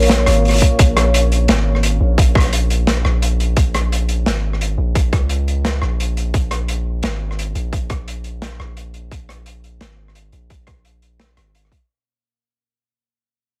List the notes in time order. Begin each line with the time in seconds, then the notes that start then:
Already playing: A#1 A#3 A#4 C#5 F5
0.03 open hi-hat
0.09 snare, closed hi-hat
0.19 cross-stick
0.26 G#1, cross-stick, closed hi-hat
0.30 closed hi-hat
0.33 closed hi-hat
0.45 closed hi-hat
0.48 cross-stick, closed hi-hat
0.51 closed hi-hat
0.53 closed hi-hat
0.56 closed hi-hat
0.58 closed hi-hat
0.60 kick, closed hi-hat
0.62 closed hi-hat
0.79 A#1, kick, closed hi-hat
0.97 cross-stick, closed hi-hat
1.14 closed hi-hat
1.32 closed hi-hat
1.48 G#1, snare, closed hi-hat
1.75 cross-stick
1.83 closed hi-hat
2.00 A#1
2.18 kick, closed hi-hat
2.35 A#1, kick, cross-stick
2.38 cross-stick, closed hi-hat
2.41 cross-stick
2.44 cross-stick
2.46 cross-stick
2.49 cross-stick
2.51 cross-stick, closed hi-hat
2.70 closed hi-hat
2.87 snare, closed hi-hat
2.97 cross-stick
3.05 A#1, cross-stick
3.22 closed hi-hat
3.40 closed hi-hat
3.57 A#1, kick, closed hi-hat
3.74 cross-stick, closed hi-hat
3.92 closed hi-hat
4.09 closed hi-hat
4.26 G#1, snare, closed hi-hat
4.53 cross-stick
4.61 closed hi-hat
4.78 A#1
4.95 kick, closed hi-hat
5.13 C#2, kick, cross-stick, closed hi-hat
5.29 closed hi-hat
5.48 closed hi-hat
5.65 snare, closed hi-hat
5.74 cross-stick
5.82 A#1, cross-stick
6.00 closed hi-hat
6.17 closed hi-hat
6.34 A#1, kick, closed hi-hat
6.51 cross-stick, closed hi-hat
6.68 closed hi-hat
7.03 G#1, snare, closed hi-hat
7.31 cross-stick
7.39 closed hi-hat
7.55 A#1, closed hi-hat
7.73 kick, closed hi-hat
7.90 A#1, kick, cross-stick, closed hi-hat
8.08 closed hi-hat
8.24 closed hi-hat
8.42 snare, closed hi-hat
8.53 cross-stick
8.59 A#1, cross-stick
8.77 closed hi-hat
8.94 closed hi-hat
9.11 kick, closed hi-hat
9.29 cross-stick, closed hi-hat
9.46 closed hi-hat
9.64 closed hi-hat
9.81 G#1, snare, closed hi-hat
10.08 cross-stick
10.15 closed hi-hat
10.32 A#1, closed hi-hat
10.50 kick, closed hi-hat
10.67 A#1, kick, cross-stick, closed hi-hat
10.85 closed hi-hat
11.02 closed hi-hat
11.20 snare, closed hi-hat
11.29 cross-stick
11.37 G#1, cross-stick, closed hi-hat
11.55 closed hi-hat
11.65 cross-stick
11.72 kick, closed hi-hat